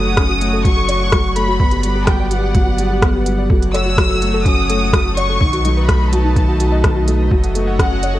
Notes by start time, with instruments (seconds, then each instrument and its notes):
Already playing: analog synth bass F#1, felt piano F#3 A3, analog synth pad A3 F#4 C#5 F#5, violin section D#6
0.17 felt piano C#4, synth arpeggio sound A4, kick, cross-stick, closed hi-hat
0.29 synth arpeggio sound F#4
0.41 felt piano A3, synth arpeggio sound F#5, closed hi-hat
0.53 synth arpeggio sound A4
0.64 felt piano F#3, violin section C#6, kick, closed hi-hat
0.77 synth arpeggio sound A4
0.88 synth arpeggio sound F#4, felt piano C#5, closed hi-hat
1.01 synth arpeggio sound F#5
1.12 felt piano F#3, synth arpeggio sound A4, kick, cross-stick, closed hi-hat
1.36 felt piano A3, synth arpeggio sound A4, violin section B5, closed hi-hat
1.49 synth arpeggio sound F#4
1.60 analog synth bass G1, felt piano B3, analog synth pad B3 D5, synth arpeggio sound D5, kick
1.71 synth arpeggio sound G4, closed hi-hat
1.83 felt piano G3, closed hi-hat
1.95 synth arpeggio sound G4
2.07 felt piano F#3, synth arpeggio sound F#4, violin section G5, kick, cross-stick, closed hi-hat
2.20 synth arpeggio sound D5
2.31 felt piano G4, synth arpeggio sound G4, violin section F#5, closed hi-hat
2.55 felt piano F#3, synth arpeggio sound G4, kick, closed hi-hat
2.67 synth arpeggio sound F#4
2.78 felt piano G3, synth arpeggio sound D5, closed hi-hat
2.91 synth arpeggio sound G4
3.02 felt piano B3, kick, cross-stick, closed hi-hat
3.15 synth arpeggio sound G4
3.26 felt piano G3, synth arpeggio sound F#4, closed hi-hat
3.38 synth arpeggio sound D5
3.50 analog synth bass F#1, felt piano F#3, analog synth pad A3 F#4 C#5, synth arpeggio sound A4, kick
3.62 closed hi-hat
3.73 synth arpeggio sound A4, felt piano C#5, violin section E6, closed hi-hat
3.86 synth arpeggio sound F#4
3.97 felt piano F#3, synth arpeggio sound F#5, kick, cross-stick, closed hi-hat
4.10 synth arpeggio sound A4
4.22 felt piano A3, closed hi-hat
4.34 synth arpeggio sound A4
4.45 felt piano C#4, synth arpeggio sound F#4, violin section D#6, kick, closed hi-hat
4.58 synth arpeggio sound F#5
4.69 felt piano A3, synth arpeggio sound A4, closed hi-hat
4.93 felt piano F#3, synth arpeggio sound A4, kick, cross-stick, closed hi-hat
5.06 synth arpeggio sound F#4
5.17 felt piano C#5, synth arpeggio sound F#5, violin section C#6, closed hi-hat
5.29 synth arpeggio sound A4
5.41 analog synth bass B1, felt piano D#3, analog synth pad D#4 B4 D#5, kick
5.53 synth arpeggio sound F#4, closed hi-hat
5.65 felt piano F#3, synth arpeggio sound D#4, closed hi-hat
5.77 synth arpeggio sound B4
5.88 felt piano A3, synth arpeggio sound F#4, violin section B5, kick, cross-stick, closed hi-hat
6.12 felt piano F#3, synth arpeggio sound F#4, violin section A5, closed hi-hat
6.25 synth arpeggio sound D#4
6.36 felt piano D#3, synth arpeggio sound B4, kick, closed hi-hat
6.48 synth arpeggio sound F#4
6.60 felt piano F#4, closed hi-hat
6.72 synth arpeggio sound D#5
6.84 felt piano D#3, synth arpeggio sound B4, kick, cross-stick, closed hi-hat
6.96 synth arpeggio sound F#4
7.08 felt piano F#3, synth arpeggio sound A4, closed hi-hat
7.31 analog synth bass F#1, felt piano F#3, analog synth pad F#4 C#5, synth arpeggio sound F#4, kick
7.44 synth arpeggio sound F#5, closed hi-hat
7.55 felt piano A3, synth arpeggio sound A4, closed hi-hat
7.67 synth arpeggio sound F#5
7.79 felt piano C#4, synth arpeggio sound A4, violin section F#5, kick, cross-stick, closed hi-hat
7.91 synth arpeggio sound F#4
8.03 felt piano C#5, synth arpeggio sound F#5, closed hi-hat
8.15 synth arpeggio sound A4